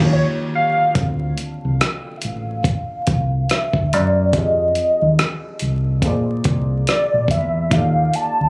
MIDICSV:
0, 0, Header, 1, 5, 480
1, 0, Start_track
1, 0, Tempo, 845070
1, 541, Time_signature, 4, 2, 24, 8
1, 4822, End_track
2, 0, Start_track
2, 0, Title_t, "Analog synth lead"
2, 0, Program_c, 0, 81
2, 74, Note_on_c, 0, 73, 104
2, 153, Note_off_c, 0, 73, 0
2, 314, Note_on_c, 0, 77, 96
2, 795, Note_on_c, 0, 81, 97
2, 804, Note_off_c, 0, 77, 0
2, 1034, Note_on_c, 0, 79, 83
2, 1043, Note_off_c, 0, 81, 0
2, 1234, Note_on_c, 0, 76, 74
2, 1242, Note_off_c, 0, 79, 0
2, 1278, Note_on_c, 0, 77, 98
2, 1287, Note_off_c, 0, 76, 0
2, 1990, Note_off_c, 0, 77, 0
2, 1999, Note_on_c, 0, 76, 95
2, 2214, Note_off_c, 0, 76, 0
2, 2238, Note_on_c, 0, 74, 86
2, 2483, Note_on_c, 0, 75, 79
2, 2491, Note_off_c, 0, 74, 0
2, 3192, Note_off_c, 0, 75, 0
2, 3917, Note_on_c, 0, 74, 84
2, 4133, Note_off_c, 0, 74, 0
2, 4152, Note_on_c, 0, 76, 86
2, 4389, Note_on_c, 0, 77, 82
2, 4397, Note_off_c, 0, 76, 0
2, 4631, Note_on_c, 0, 81, 97
2, 4640, Note_off_c, 0, 77, 0
2, 4822, Note_off_c, 0, 81, 0
2, 4822, End_track
3, 0, Start_track
3, 0, Title_t, "Upright piano"
3, 0, Program_c, 1, 0
3, 0, Control_c, 1, 64, 127
3, 0, Note_on_c, 1, 51, 88
3, 0, Note_on_c, 1, 58, 90
3, 0, Note_on_c, 1, 65, 88
3, 0, Note_on_c, 1, 67, 88
3, 0, Note_on_c, 1, 73, 91
3, 28, Note_off_c, 1, 73, 0
3, 28, Note_on_c, 1, 73, 89
3, 115, Note_off_c, 1, 51, 0
3, 120, Note_off_c, 1, 58, 0
3, 124, Note_off_c, 1, 65, 0
3, 130, Note_off_c, 1, 67, 0
3, 156, Note_off_c, 1, 73, 0
3, 532, Note_on_c, 1, 50, 50
3, 540, Note_on_c, 1, 60, 45
3, 548, Note_on_c, 1, 62, 50
3, 550, Control_c, 1, 64, 0
3, 558, Note_on_c, 1, 65, 44
3, 566, Note_on_c, 1, 74, 52
3, 639, Control_c, 1, 64, 127
3, 2434, Note_off_c, 1, 50, 0
3, 2438, Note_off_c, 1, 60, 0
3, 2442, Note_off_c, 1, 62, 0
3, 2447, Note_off_c, 1, 65, 0
3, 2451, Note_off_c, 1, 74, 0
3, 2459, Note_on_c, 1, 53, 53
3, 2466, Note_on_c, 1, 60, 43
3, 2468, Control_c, 1, 64, 0
3, 2477, Note_on_c, 1, 67, 44
3, 2484, Note_on_c, 1, 68, 49
3, 2493, Note_on_c, 1, 74, 48
3, 2521, Note_off_c, 1, 74, 0
3, 2529, Note_on_c, 1, 75, 60
3, 2580, Control_c, 1, 64, 127
3, 3401, Note_off_c, 1, 53, 0
3, 3405, Note_off_c, 1, 60, 0
3, 3410, Note_off_c, 1, 67, 0
3, 3414, Note_off_c, 1, 68, 0
3, 3414, Note_on_c, 1, 46, 62
3, 3424, Note_on_c, 1, 58, 56
3, 3430, Control_c, 1, 64, 0
3, 3432, Note_on_c, 1, 68, 56
3, 3437, Note_off_c, 1, 75, 0
3, 3442, Note_on_c, 1, 72, 64
3, 3449, Note_on_c, 1, 74, 74
3, 3538, Control_c, 1, 64, 127
3, 4359, Note_off_c, 1, 46, 0
3, 4363, Note_off_c, 1, 58, 0
3, 4368, Note_off_c, 1, 68, 0
3, 4372, Note_on_c, 1, 63, 55
3, 4373, Note_off_c, 1, 72, 0
3, 4376, Note_off_c, 1, 74, 0
3, 4379, Note_on_c, 1, 58, 50
3, 4385, Note_on_c, 1, 65, 44
3, 4390, Control_c, 1, 64, 0
3, 4392, Note_on_c, 1, 67, 46
3, 4398, Note_on_c, 1, 69, 49
3, 4407, Note_on_c, 1, 74, 65
3, 4501, Control_c, 1, 64, 127
3, 4822, Note_off_c, 1, 58, 0
3, 4822, Note_off_c, 1, 63, 0
3, 4822, Note_off_c, 1, 65, 0
3, 4822, Note_off_c, 1, 67, 0
3, 4822, Note_off_c, 1, 69, 0
3, 4822, Note_off_c, 1, 74, 0
3, 4822, End_track
4, 0, Start_track
4, 0, Title_t, "Fingered electric bass"
4, 0, Program_c, 2, 33
4, 0, Note_on_c, 2, 39, 82
4, 122, Note_off_c, 2, 39, 0
4, 548, Note_on_c, 2, 38, 85
4, 755, Note_off_c, 2, 38, 0
4, 935, Note_on_c, 2, 36, 74
4, 1016, Note_off_c, 2, 36, 0
4, 1275, Note_on_c, 2, 33, 65
4, 1479, Note_off_c, 2, 33, 0
4, 1751, Note_on_c, 2, 36, 69
4, 1957, Note_off_c, 2, 36, 0
4, 2128, Note_on_c, 2, 38, 63
4, 2235, Note_off_c, 2, 38, 0
4, 2235, Note_on_c, 2, 42, 78
4, 2467, Note_off_c, 2, 42, 0
4, 2467, Note_on_c, 2, 41, 81
4, 2675, Note_off_c, 2, 41, 0
4, 2851, Note_on_c, 2, 39, 70
4, 2933, Note_off_c, 2, 39, 0
4, 3191, Note_on_c, 2, 36, 72
4, 3425, Note_off_c, 2, 36, 0
4, 3425, Note_on_c, 2, 34, 69
4, 3634, Note_off_c, 2, 34, 0
4, 3671, Note_on_c, 2, 36, 83
4, 3877, Note_off_c, 2, 36, 0
4, 4053, Note_on_c, 2, 34, 68
4, 4142, Note_on_c, 2, 40, 63
4, 4151, Note_off_c, 2, 34, 0
4, 4387, Note_off_c, 2, 40, 0
4, 4387, Note_on_c, 2, 39, 90
4, 4594, Note_off_c, 2, 39, 0
4, 4775, Note_on_c, 2, 38, 62
4, 4822, Note_off_c, 2, 38, 0
4, 4822, End_track
5, 0, Start_track
5, 0, Title_t, "Drums"
5, 541, Note_on_c, 9, 36, 88
5, 541, Note_on_c, 9, 42, 59
5, 598, Note_off_c, 9, 36, 0
5, 598, Note_off_c, 9, 42, 0
5, 781, Note_on_c, 9, 42, 47
5, 838, Note_off_c, 9, 42, 0
5, 1028, Note_on_c, 9, 42, 62
5, 1029, Note_on_c, 9, 37, 85
5, 1084, Note_off_c, 9, 42, 0
5, 1086, Note_off_c, 9, 37, 0
5, 1259, Note_on_c, 9, 42, 51
5, 1316, Note_off_c, 9, 42, 0
5, 1501, Note_on_c, 9, 36, 80
5, 1506, Note_on_c, 9, 42, 57
5, 1558, Note_off_c, 9, 36, 0
5, 1563, Note_off_c, 9, 42, 0
5, 1742, Note_on_c, 9, 42, 52
5, 1746, Note_on_c, 9, 36, 75
5, 1799, Note_off_c, 9, 42, 0
5, 1803, Note_off_c, 9, 36, 0
5, 1985, Note_on_c, 9, 42, 58
5, 1994, Note_on_c, 9, 37, 82
5, 2042, Note_off_c, 9, 42, 0
5, 2050, Note_off_c, 9, 37, 0
5, 2121, Note_on_c, 9, 36, 60
5, 2178, Note_off_c, 9, 36, 0
5, 2232, Note_on_c, 9, 42, 57
5, 2289, Note_off_c, 9, 42, 0
5, 2461, Note_on_c, 9, 36, 82
5, 2461, Note_on_c, 9, 42, 64
5, 2518, Note_off_c, 9, 36, 0
5, 2518, Note_off_c, 9, 42, 0
5, 2700, Note_on_c, 9, 42, 45
5, 2757, Note_off_c, 9, 42, 0
5, 2947, Note_on_c, 9, 42, 69
5, 2948, Note_on_c, 9, 37, 101
5, 3004, Note_off_c, 9, 42, 0
5, 3005, Note_off_c, 9, 37, 0
5, 3178, Note_on_c, 9, 42, 56
5, 3234, Note_off_c, 9, 42, 0
5, 3420, Note_on_c, 9, 36, 80
5, 3422, Note_on_c, 9, 42, 64
5, 3477, Note_off_c, 9, 36, 0
5, 3479, Note_off_c, 9, 42, 0
5, 3659, Note_on_c, 9, 42, 55
5, 3665, Note_on_c, 9, 36, 75
5, 3716, Note_off_c, 9, 42, 0
5, 3722, Note_off_c, 9, 36, 0
5, 3903, Note_on_c, 9, 42, 58
5, 3912, Note_on_c, 9, 37, 79
5, 3960, Note_off_c, 9, 42, 0
5, 3968, Note_off_c, 9, 37, 0
5, 4136, Note_on_c, 9, 36, 73
5, 4150, Note_on_c, 9, 42, 55
5, 4192, Note_off_c, 9, 36, 0
5, 4207, Note_off_c, 9, 42, 0
5, 4381, Note_on_c, 9, 36, 91
5, 4382, Note_on_c, 9, 42, 65
5, 4438, Note_off_c, 9, 36, 0
5, 4439, Note_off_c, 9, 42, 0
5, 4621, Note_on_c, 9, 42, 51
5, 4678, Note_off_c, 9, 42, 0
5, 4822, End_track
0, 0, End_of_file